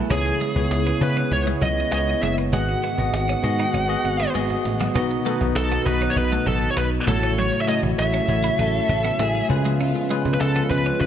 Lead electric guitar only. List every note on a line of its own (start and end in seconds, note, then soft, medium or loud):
0.12 1.02 G#4 medium
1.03 1.30 B4 medium
1.33 1.41 C#5 loud
1.62 1.91 D#5 medium
1.92 2.22 D#5 loud
2.23 2.31 E5 medium
2.54 4.31 F#5 loud
5.56 5.86 A4 medium
5.87 6.10 B4 medium
6.10 6.17 C#5 medium
6.17 6.47 B4 medium
6.47 6.69 A4 medium
6.71 6.77 C#5 medium
6.78 6.86 B4 medium
7.08 7.39 A4 medium
7.38 7.61 C#5 loud
7.61 7.68 E5 medium
7.69 7.77 D#5 medium
7.99 9.46 E5 medium
10.34 10.40 B4 medium
10.41 10.69 A4 medium
10.71 11.00 B4 medium
11.01 11.06 B4 medium